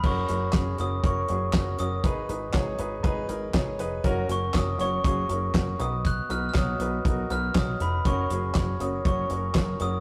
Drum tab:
CC |x-------|--------|--------|--------|
HH |-xxxxxxx|xxxxxxxx|xxxxxxxx|xxxxxxxx|
CP |--x---x-|--x---x-|--x---x-|--x---x-|
SD |--o---o-|--o---o-|--o---o-|--o---o-|
BD |o-o-o-o-|o-o-o-o-|o-o-o-o-|o-o-o-o-|

CC |--------|
HH |xxxxxxxx|
CP |--x---x-|
SD |--o---o-|
BD |o-o-o-o-|